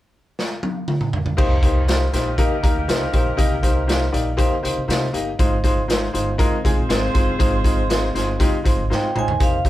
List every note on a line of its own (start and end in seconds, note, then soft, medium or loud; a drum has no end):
0.39 snare medium
0.63 high tom medium
0.88 mid tom medium
1.01 mid tom medium
1.13 floor tom medium
1.26 floor tom medium
1.37 2.10 C2 medium
1.37 1.53 A#3 loud
1.37 5.11 A#3 medium
1.37 1.53 D#4 medium
1.37 5.11 D#4 medium
1.37 1.54 G4 medium
1.37 5.11 G4 medium
1.37 5.11 A#4 medium
1.37 1.54 C5 loud
1.37 kick loud
1.37 crash medium
1.62 1.79 A#3 medium
1.62 1.79 D#4 medium
1.62 1.79 G4 medium
1.62 1.79 C5 medium
1.62 kick medium
1.62 closed hi-hat medium
1.88 2.04 A#3 medium
1.88 2.04 D#4 medium
1.88 2.04 G4 medium
1.88 2.04 C5 medium
1.88 snare loud
1.88 closed hi-hat medium
2.13 2.43 A#1 medium
2.13 2.29 A#3 medium
2.13 2.29 D#4 medium
2.13 2.29 G4 medium
2.13 2.29 C5 medium
2.13 snare soft
2.13 closed hi-hat medium
2.38 2.54 A#3 loud
2.38 2.54 D#4 medium
2.38 2.54 G4 medium
2.38 2.54 A#4 loud
2.38 kick medium
2.38 closed hi-hat medium
2.62 2.73 D#2 medium
2.62 2.79 A#3 medium
2.62 2.79 D#4 medium
2.62 2.79 G4 medium
2.62 2.79 A#4 medium
2.62 kick medium
2.62 closed hi-hat medium
2.75 2.85 D2 medium
2.88 3.08 C2 medium
2.88 3.04 A#3 medium
2.88 3.04 D#4 medium
2.88 3.04 G4 medium
2.88 3.04 C5 medium
2.88 snare loud
2.88 closed hi-hat medium
3.12 3.33 A#1 medium
3.12 3.29 A#3 medium
3.12 3.29 D#4 medium
3.12 3.29 G4 medium
3.12 3.29 C5 medium
3.12 kick medium
3.12 closed hi-hat medium
3.37 4.10 C2 medium
3.37 3.54 A#3 loud
3.37 3.54 D#4 medium
3.37 3.54 G4 medium
3.37 3.54 D#5 loud
3.37 kick medium
3.37 closed hi-hat medium
3.62 3.79 A#3 medium
3.62 3.79 D#4 medium
3.62 3.79 G4 medium
3.62 3.79 C5 medium
3.62 kick medium
3.62 closed hi-hat medium
3.87 4.04 A#3 medium
3.87 4.04 D#4 medium
3.87 4.04 G4 medium
3.87 4.04 C5 medium
3.87 snare loud
3.87 closed hi-hat medium
4.12 4.43 A#1 medium
4.12 4.29 A#3 medium
4.12 4.29 D#4 medium
4.12 4.29 G4 medium
4.12 4.29 D5 medium
4.12 closed hi-hat medium
4.37 4.54 A#3 loud
4.37 4.54 D#4 medium
4.37 4.54 G4 loud
4.37 4.54 C5 loud
4.37 kick medium
4.37 closed hi-hat medium
4.62 4.74 C2 medium
4.62 4.79 A#3 medium
4.62 4.79 D#4 medium
4.62 4.79 G4 medium
4.62 4.79 C5 medium
4.62 closed hi-hat medium
4.76 4.86 C2 medium
4.88 5.08 C3 medium
4.88 5.04 A#3 medium
4.88 5.04 D#4 medium
4.88 5.05 G4 medium
4.88 5.05 C5 medium
4.88 snare loud
4.88 closed hi-hat medium
5.13 5.34 G1 medium
5.13 5.29 A#3 medium
5.13 5.29 D#4 medium
5.13 5.30 G4 medium
5.13 5.30 D#5 medium
5.13 closed hi-hat medium
5.39 6.11 G#1 medium
5.39 5.55 G#3 medium
5.39 5.55 D#4 medium
5.39 5.55 F4 medium
5.39 5.55 C5 loud
5.39 kick loud
5.39 closed hi-hat medium
5.64 5.80 G#3 medium
5.64 5.80 D#4 medium
5.64 5.80 F4 medium
5.64 5.80 C5 medium
5.64 kick medium
5.64 closed hi-hat medium
5.88 6.04 G#3 medium
5.88 6.05 D#4 medium
5.88 6.05 F4 medium
5.88 6.05 C5 medium
5.88 snare loud
5.88 closed hi-hat medium
6.13 6.44 G1 medium
6.13 6.30 G#3 medium
6.13 6.30 D#4 medium
6.13 6.30 F4 medium
6.13 6.30 C5 medium
6.13 closed hi-hat medium
6.38 6.55 G#3 loud
6.38 9.11 C4 medium
6.38 6.55 D#4 loud
6.38 6.55 F4 medium
6.38 9.11 F4 medium
6.38 9.11 G#4 medium
6.38 6.55 A#4 loud
6.38 9.11 C5 loud
6.38 kick medium
6.38 closed hi-hat medium
6.64 6.75 C2 medium
6.64 6.80 G#3 medium
6.64 6.80 D#4 medium
6.64 6.80 F4 medium
6.64 6.80 G#4 medium
6.64 kick medium
6.64 closed hi-hat medium
6.77 6.87 A#1 medium
6.89 7.10 G#1 medium
6.89 7.05 G#3 medium
6.89 7.05 D#4 medium
6.89 7.05 F4 medium
6.89 7.05 C5 medium
6.89 snare loud
6.89 closed hi-hat medium
7.14 7.35 G1 medium
7.14 7.30 G#3 medium
7.14 7.30 D#4 medium
7.14 7.30 F4 medium
7.14 7.30 C5 medium
7.14 kick medium
7.14 closed hi-hat medium
7.38 8.11 G#1 medium
7.38 7.55 G#3 medium
7.38 7.55 D#4 medium
7.38 7.55 F4 medium
7.38 7.55 C5 loud
7.38 kick loud
7.38 closed hi-hat medium
7.64 7.80 G#3 medium
7.64 7.80 D#4 medium
7.64 7.81 F4 medium
7.64 7.81 C5 medium
7.64 kick medium
7.64 closed hi-hat medium
7.89 8.05 G#3 medium
7.89 8.05 D#4 medium
7.89 8.06 F4 medium
7.89 8.06 C5 medium
7.89 snare loud
7.89 closed hi-hat medium
8.14 8.45 G1 medium
8.14 8.30 G#3 medium
8.14 8.31 D#4 medium
8.14 8.31 F4 medium
8.14 8.31 C5 medium
8.14 snare soft
8.14 closed hi-hat medium
8.40 8.56 G#3 medium
8.40 8.56 D#4 medium
8.40 8.56 F4 medium
8.40 8.56 G4 loud
8.40 kick medium
8.40 closed hi-hat medium
8.64 8.75 G#1 medium
8.64 8.80 G#3 medium
8.64 8.80 D#4 medium
8.64 8.81 F4 medium
8.64 8.81 C5 medium
8.64 kick medium
8.64 closed hi-hat medium
8.78 8.88 G#1 medium
8.90 9.11 G#2 medium
8.90 9.06 G#3 medium
8.90 9.06 D#4 medium
8.90 9.06 F4 medium
8.90 9.06 C5 medium
8.90 snare soft
8.94 9.16 G5 medium
9.15 9.36 A#1 medium
9.15 9.31 G#3 medium
9.15 9.31 D#4 medium
9.15 9.31 F4 medium
9.15 9.31 C5 medium
9.15 9.40 G#5 medium
9.15 mid tom medium
9.28 floor tom medium
9.40 9.69 C2 medium
9.40 9.56 A#3 medium
9.40 9.56 D#4 medium
9.40 9.56 G4 medium
9.40 9.56 C5 medium
9.40 9.65 F5 medium
9.40 kick medium
9.40 closed hi-hat medium
9.65 9.69 A#3 medium
9.65 9.69 D#4 medium
9.65 9.69 G4 medium
9.65 9.69 C5 medium
9.65 kick medium
9.65 closed hi-hat medium